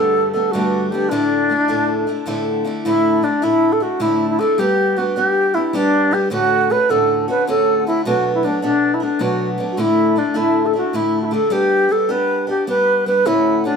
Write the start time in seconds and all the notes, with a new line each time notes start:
Already playing: G2 D3 G3 A3 B3 D4 A4
0.32 G3 A3 B3 D4 A4
0.51 G2 D3 G3 A3 B3 F#4
0.56 D4
0.91 G3 A3 B3 G4
0.95 D4
1.09 D2 A2 D3 A3 D4 E4
1.49 D3 A3 D4 E4
1.68 D2 A2 D3 A3 D4 E4
2.07 D3 A3 D4 E4
2.26 D2 A2 D3 A3 D4 E4
2.65 D3 A3 D4 E4
2.84 A2 D3 A3 D4 E4
3.22 D3 A3 D4 E4
3.42 A2 D3 A3 D4 E4
3.72 A4
3.80 A3 D4 E4 F#4
4.00 A2 D3 A3 D4 E4
4.29 E4
4.39 D3 A3 D4 E4 A4
4.58 G3 B3 D4 G4
4.97 G3 B3 D4 F#4 G4
5.15 G3 B3 D4 G4
5.54 B3 D4 E4 G4
5.73 G3 B3 D4 G4
6.11 G3 B3 D4 G4
6.30 D2 A2 D3 A3 C#4 F#4
6.69 D3 A3 C#4 F#4 B4
6.89 D2 A2 D3 A3 C#4 F#4 A4
7.28 D3 A3 C#4 F#4 B4
7.47 D2 A2 D3 A3 C#4 F#4 A4
7.87 D3 A3 C#4 E4 F#4
8.05 B2 F#3 A3 B3 D4 F#4
8.35 E4
8.43 F#3 A3 B3 D4
8.62 B2 F#3 A3 B3 D4
8.94 E4
9.00 A3 B3 D4
9.19 B2 F#3 A3 B3 D4 F#4
9.58 F#3 A3 B3 D4
9.72 F#4
9.77 A2 D3 A3 D4 E4
10.16 D3 A3 D4 E4
10.34 A2 D3 A3 D4 E4
10.66 A4
10.73 A3 D4 E4 F#4
10.93 A2 D3 A3 D4 E4
11.22 E4 F#4
11.31 D3 A3 D4 E4 A4
11.50 G3 B3 D4 G4
11.89 G3 B3 D4 G4 A4
12.09 G3 B3 D4 G4 B4
12.47 B3 D4 G4
12.67 G3 B3 D4 G4 B4
13.06 G3 B3 D4 G4 B4
13.25 D2 A2 D3 A3 C#4 E4 F#4
13.64 D3 A3 C#4 D4 F#4